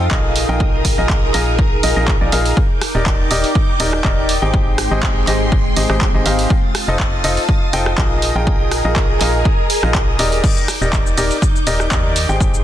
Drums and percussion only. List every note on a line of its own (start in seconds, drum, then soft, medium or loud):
0.11 kick loud
0.11 clap loud
0.36 open hi-hat loud
0.60 kick loud
0.85 kick medium
0.85 open hi-hat loud
1.09 kick loud
1.09 clap loud
1.34 clap soft
1.34 open hi-hat loud
1.59 kick loud
1.83 open hi-hat loud
2.08 kick loud
2.08 clap loud
2.32 open hi-hat loud
2.46 open hi-hat medium
2.57 kick loud
2.81 cross-stick medium
2.81 open hi-hat loud
3.06 kick loud
3.06 clap loud
3.31 open hi-hat loud
3.44 open hi-hat medium
3.55 kick loud
3.80 open hi-hat loud
3.93 cross-stick medium
4.04 kick loud
4.04 clap loud
4.29 open hi-hat loud
4.54 kick loud
4.78 cross-stick medium
4.78 open hi-hat loud
5.03 kick loud
5.03 clap loud
5.27 clap soft
5.27 open hi-hat loud
5.52 kick loud
5.76 open hi-hat loud
5.90 cross-stick medium
6.01 kick loud
6.01 clap loud
6.26 open hi-hat loud
6.39 open hi-hat medium
6.50 kick loud
6.75 cross-stick medium
6.75 open hi-hat loud
6.99 kick loud
6.99 clap loud
7.24 open hi-hat loud
7.37 open hi-hat medium
7.49 kick loud
7.73 open hi-hat loud
7.86 cross-stick medium
7.98 kick loud
7.98 clap loud
8.22 open hi-hat loud
8.47 kick loud
8.71 cross-stick medium
8.71 open hi-hat loud
8.96 kick loud
8.96 clap loud
9.21 clap soft
9.21 open hi-hat loud
9.45 kick loud
9.70 open hi-hat loud
9.83 cross-stick medium
9.95 kick loud
9.95 clap loud
10.19 open hi-hat loud
10.32 open hi-hat medium
10.44 kick loud
10.44 crash loud
10.44 shaker soft
10.57 shaker soft
10.68 cross-stick medium
10.68 open hi-hat loud
10.68 shaker medium
10.82 shaker soft
10.93 kick loud
10.93 clap loud
10.93 shaker soft
11.07 shaker soft
11.18 open hi-hat loud
11.18 shaker medium
11.31 open hi-hat medium
11.31 shaker soft
11.42 kick loud
11.42 shaker soft
11.56 shaker soft
11.67 open hi-hat loud
11.67 shaker medium
11.80 cross-stick medium
11.80 shaker soft
11.91 kick loud
11.91 clap loud
11.91 shaker soft
12.16 open hi-hat loud
12.16 shaker medium
12.30 shaker soft
12.40 kick loud
12.40 shaker soft
12.54 shaker soft